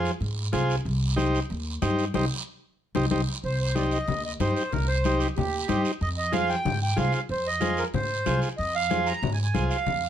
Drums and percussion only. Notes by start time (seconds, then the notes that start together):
0.05 short guiro
0.20 high conga, long guiro
0.53 high conga, short guiro
0.70 short guiro
0.85 high conga, long guiro
1.18 high conga, short guiro
1.35 short guiro
1.50 high conga, long guiro
1.82 high conga, short guiro
1.99 short guiro
2.14 high conga, long guiro
2.95 high conga, long guiro
3.11 high conga, long guiro
3.44 high conga, long guiro
3.76 high conga, short guiro
3.91 short guiro
4.08 high conga, low conga, long guiro
4.40 high conga, short guiro
4.57 short guiro
4.72 high conga, low conga, long guiro
5.04 high conga, short guiro
5.20 short guiro
5.36 high conga, low conga, long guiro
5.68 high conga, short guiro
5.85 short guiro
6.01 high conga, long guiro
6.33 high conga, short guiro
6.49 short guiro
6.65 high conga, low conga, long guiro
6.97 high conga, short guiro
7.13 short guiro
7.29 high conga, long guiro
7.61 high conga, short guiro
7.77 short guiro
7.94 high conga, low conga, long guiro
8.26 high conga, short guiro
8.42 short guiro
8.58 high conga, long guiro
8.90 high conga, short guiro
9.07 short guiro
9.23 high conga, low conga, long guiro
9.55 high conga, short guiro
9.71 short guiro
9.86 high conga, low conga, long guiro